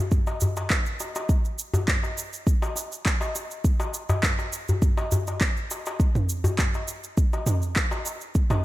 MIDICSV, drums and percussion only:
0, 0, Header, 1, 3, 480
1, 0, Start_track
1, 0, Tempo, 588235
1, 1055, Time_signature, 4, 2, 24, 8
1, 7058, End_track
2, 0, Start_track
2, 0, Title_t, "Darbuka"
2, 221, Note_on_c, 9, 62, 33
2, 222, Note_on_c, 9, 63, 60
2, 302, Note_off_c, 9, 62, 0
2, 303, Note_off_c, 9, 63, 0
2, 342, Note_on_c, 9, 64, 72
2, 424, Note_off_c, 9, 64, 0
2, 465, Note_on_c, 9, 62, 68
2, 546, Note_off_c, 9, 62, 0
2, 819, Note_on_c, 9, 62, 54
2, 901, Note_off_c, 9, 62, 0
2, 946, Note_on_c, 9, 63, 57
2, 1027, Note_off_c, 9, 63, 0
2, 1416, Note_on_c, 9, 64, 88
2, 1498, Note_off_c, 9, 64, 0
2, 1659, Note_on_c, 9, 62, 59
2, 1741, Note_off_c, 9, 62, 0
2, 2141, Note_on_c, 9, 63, 64
2, 2222, Note_off_c, 9, 63, 0
2, 2250, Note_on_c, 9, 62, 42
2, 2331, Note_off_c, 9, 62, 0
2, 2618, Note_on_c, 9, 63, 60
2, 2619, Note_on_c, 9, 62, 44
2, 2699, Note_off_c, 9, 63, 0
2, 2701, Note_off_c, 9, 62, 0
2, 2738, Note_on_c, 9, 63, 32
2, 2820, Note_off_c, 9, 63, 0
2, 3098, Note_on_c, 9, 63, 64
2, 3180, Note_off_c, 9, 63, 0
2, 3341, Note_on_c, 9, 64, 84
2, 3342, Note_on_c, 9, 63, 60
2, 3422, Note_off_c, 9, 64, 0
2, 3423, Note_off_c, 9, 63, 0
2, 3580, Note_on_c, 9, 62, 60
2, 3661, Note_off_c, 9, 62, 0
2, 3827, Note_on_c, 9, 64, 76
2, 3909, Note_off_c, 9, 64, 0
2, 4060, Note_on_c, 9, 63, 63
2, 4062, Note_on_c, 9, 62, 32
2, 4141, Note_off_c, 9, 63, 0
2, 4144, Note_off_c, 9, 62, 0
2, 4178, Note_on_c, 9, 64, 83
2, 4260, Note_off_c, 9, 64, 0
2, 4307, Note_on_c, 9, 62, 56
2, 4389, Note_off_c, 9, 62, 0
2, 4416, Note_on_c, 9, 62, 27
2, 4498, Note_off_c, 9, 62, 0
2, 4661, Note_on_c, 9, 62, 58
2, 4742, Note_off_c, 9, 62, 0
2, 4789, Note_on_c, 9, 63, 56
2, 4871, Note_off_c, 9, 63, 0
2, 5256, Note_on_c, 9, 64, 89
2, 5338, Note_off_c, 9, 64, 0
2, 5508, Note_on_c, 9, 62, 58
2, 5589, Note_off_c, 9, 62, 0
2, 5984, Note_on_c, 9, 63, 54
2, 6065, Note_off_c, 9, 63, 0
2, 6096, Note_on_c, 9, 62, 49
2, 6177, Note_off_c, 9, 62, 0
2, 6457, Note_on_c, 9, 63, 60
2, 6464, Note_on_c, 9, 62, 50
2, 6539, Note_off_c, 9, 63, 0
2, 6546, Note_off_c, 9, 62, 0
2, 6577, Note_on_c, 9, 63, 28
2, 6658, Note_off_c, 9, 63, 0
2, 6940, Note_on_c, 9, 63, 70
2, 7021, Note_off_c, 9, 63, 0
2, 7058, End_track
3, 0, Start_track
3, 0, Title_t, "Drums"
3, 94, Note_on_c, 9, 82, 39
3, 95, Note_on_c, 9, 36, 94
3, 176, Note_off_c, 9, 82, 0
3, 177, Note_off_c, 9, 36, 0
3, 219, Note_on_c, 9, 82, 19
3, 300, Note_off_c, 9, 82, 0
3, 332, Note_on_c, 9, 82, 68
3, 414, Note_off_c, 9, 82, 0
3, 460, Note_on_c, 9, 82, 31
3, 542, Note_off_c, 9, 82, 0
3, 574, Note_on_c, 9, 36, 94
3, 574, Note_on_c, 9, 39, 85
3, 575, Note_on_c, 9, 82, 41
3, 655, Note_off_c, 9, 39, 0
3, 656, Note_off_c, 9, 36, 0
3, 656, Note_off_c, 9, 82, 0
3, 700, Note_on_c, 9, 82, 20
3, 782, Note_off_c, 9, 82, 0
3, 814, Note_on_c, 9, 82, 73
3, 896, Note_off_c, 9, 82, 0
3, 942, Note_on_c, 9, 82, 34
3, 1024, Note_off_c, 9, 82, 0
3, 1054, Note_on_c, 9, 36, 105
3, 1055, Note_on_c, 9, 82, 43
3, 1135, Note_off_c, 9, 36, 0
3, 1136, Note_off_c, 9, 82, 0
3, 1181, Note_on_c, 9, 82, 20
3, 1263, Note_off_c, 9, 82, 0
3, 1296, Note_on_c, 9, 82, 75
3, 1377, Note_off_c, 9, 82, 0
3, 1423, Note_on_c, 9, 82, 34
3, 1504, Note_off_c, 9, 82, 0
3, 1534, Note_on_c, 9, 36, 107
3, 1536, Note_on_c, 9, 39, 95
3, 1537, Note_on_c, 9, 82, 41
3, 1615, Note_off_c, 9, 36, 0
3, 1618, Note_off_c, 9, 39, 0
3, 1619, Note_off_c, 9, 82, 0
3, 1664, Note_on_c, 9, 82, 23
3, 1745, Note_off_c, 9, 82, 0
3, 1777, Note_on_c, 9, 82, 75
3, 1858, Note_off_c, 9, 82, 0
3, 1903, Note_on_c, 9, 82, 34
3, 1985, Note_off_c, 9, 82, 0
3, 2013, Note_on_c, 9, 36, 100
3, 2016, Note_on_c, 9, 82, 42
3, 2095, Note_off_c, 9, 36, 0
3, 2098, Note_off_c, 9, 82, 0
3, 2144, Note_on_c, 9, 82, 21
3, 2225, Note_off_c, 9, 82, 0
3, 2256, Note_on_c, 9, 82, 70
3, 2338, Note_off_c, 9, 82, 0
3, 2385, Note_on_c, 9, 82, 30
3, 2467, Note_off_c, 9, 82, 0
3, 2494, Note_on_c, 9, 36, 99
3, 2497, Note_on_c, 9, 39, 90
3, 2498, Note_on_c, 9, 82, 39
3, 2575, Note_off_c, 9, 36, 0
3, 2578, Note_off_c, 9, 39, 0
3, 2579, Note_off_c, 9, 82, 0
3, 2622, Note_on_c, 9, 82, 20
3, 2704, Note_off_c, 9, 82, 0
3, 2737, Note_on_c, 9, 82, 79
3, 2818, Note_off_c, 9, 82, 0
3, 2864, Note_on_c, 9, 82, 33
3, 2945, Note_off_c, 9, 82, 0
3, 2974, Note_on_c, 9, 36, 93
3, 2976, Note_on_c, 9, 82, 42
3, 3056, Note_off_c, 9, 36, 0
3, 3057, Note_off_c, 9, 82, 0
3, 3102, Note_on_c, 9, 82, 22
3, 3183, Note_off_c, 9, 82, 0
3, 3215, Note_on_c, 9, 82, 69
3, 3297, Note_off_c, 9, 82, 0
3, 3340, Note_on_c, 9, 82, 32
3, 3422, Note_off_c, 9, 82, 0
3, 3454, Note_on_c, 9, 36, 97
3, 3455, Note_on_c, 9, 39, 93
3, 3456, Note_on_c, 9, 82, 40
3, 3535, Note_off_c, 9, 36, 0
3, 3536, Note_off_c, 9, 39, 0
3, 3537, Note_off_c, 9, 82, 0
3, 3582, Note_on_c, 9, 82, 23
3, 3664, Note_off_c, 9, 82, 0
3, 3694, Note_on_c, 9, 82, 73
3, 3776, Note_off_c, 9, 82, 0
3, 3821, Note_on_c, 9, 82, 33
3, 3903, Note_off_c, 9, 82, 0
3, 3934, Note_on_c, 9, 36, 106
3, 3935, Note_on_c, 9, 82, 40
3, 4015, Note_off_c, 9, 36, 0
3, 4017, Note_off_c, 9, 82, 0
3, 4062, Note_on_c, 9, 82, 21
3, 4143, Note_off_c, 9, 82, 0
3, 4174, Note_on_c, 9, 82, 73
3, 4256, Note_off_c, 9, 82, 0
3, 4300, Note_on_c, 9, 82, 30
3, 4382, Note_off_c, 9, 82, 0
3, 4413, Note_on_c, 9, 36, 99
3, 4414, Note_on_c, 9, 39, 82
3, 4415, Note_on_c, 9, 82, 40
3, 4495, Note_off_c, 9, 36, 0
3, 4496, Note_off_c, 9, 39, 0
3, 4496, Note_off_c, 9, 82, 0
3, 4543, Note_on_c, 9, 82, 20
3, 4624, Note_off_c, 9, 82, 0
3, 4656, Note_on_c, 9, 82, 79
3, 4738, Note_off_c, 9, 82, 0
3, 4781, Note_on_c, 9, 82, 31
3, 4863, Note_off_c, 9, 82, 0
3, 4894, Note_on_c, 9, 36, 95
3, 4895, Note_on_c, 9, 82, 41
3, 4975, Note_off_c, 9, 36, 0
3, 4976, Note_off_c, 9, 82, 0
3, 5021, Note_on_c, 9, 45, 71
3, 5022, Note_on_c, 9, 82, 21
3, 5103, Note_off_c, 9, 45, 0
3, 5104, Note_off_c, 9, 82, 0
3, 5135, Note_on_c, 9, 82, 67
3, 5216, Note_off_c, 9, 82, 0
3, 5262, Note_on_c, 9, 82, 33
3, 5343, Note_off_c, 9, 82, 0
3, 5374, Note_on_c, 9, 36, 101
3, 5374, Note_on_c, 9, 39, 82
3, 5375, Note_on_c, 9, 82, 41
3, 5456, Note_off_c, 9, 36, 0
3, 5456, Note_off_c, 9, 39, 0
3, 5457, Note_off_c, 9, 82, 0
3, 5500, Note_on_c, 9, 82, 22
3, 5582, Note_off_c, 9, 82, 0
3, 5613, Note_on_c, 9, 82, 71
3, 5695, Note_off_c, 9, 82, 0
3, 5740, Note_on_c, 9, 82, 32
3, 5822, Note_off_c, 9, 82, 0
3, 5855, Note_on_c, 9, 36, 100
3, 5856, Note_on_c, 9, 82, 41
3, 5936, Note_off_c, 9, 36, 0
3, 5937, Note_off_c, 9, 82, 0
3, 5981, Note_on_c, 9, 82, 20
3, 6062, Note_off_c, 9, 82, 0
3, 6091, Note_on_c, 9, 45, 68
3, 6092, Note_on_c, 9, 82, 73
3, 6173, Note_off_c, 9, 45, 0
3, 6174, Note_off_c, 9, 82, 0
3, 6220, Note_on_c, 9, 82, 32
3, 6301, Note_off_c, 9, 82, 0
3, 6333, Note_on_c, 9, 39, 83
3, 6334, Note_on_c, 9, 82, 40
3, 6335, Note_on_c, 9, 36, 96
3, 6415, Note_off_c, 9, 39, 0
3, 6416, Note_off_c, 9, 36, 0
3, 6416, Note_off_c, 9, 82, 0
3, 6459, Note_on_c, 9, 82, 20
3, 6541, Note_off_c, 9, 82, 0
3, 6573, Note_on_c, 9, 82, 75
3, 6655, Note_off_c, 9, 82, 0
3, 6700, Note_on_c, 9, 82, 33
3, 6781, Note_off_c, 9, 82, 0
3, 6812, Note_on_c, 9, 82, 40
3, 6815, Note_on_c, 9, 36, 89
3, 6894, Note_off_c, 9, 82, 0
3, 6896, Note_off_c, 9, 36, 0
3, 6938, Note_on_c, 9, 45, 73
3, 6939, Note_on_c, 9, 82, 19
3, 7019, Note_off_c, 9, 45, 0
3, 7020, Note_off_c, 9, 82, 0
3, 7058, End_track
0, 0, End_of_file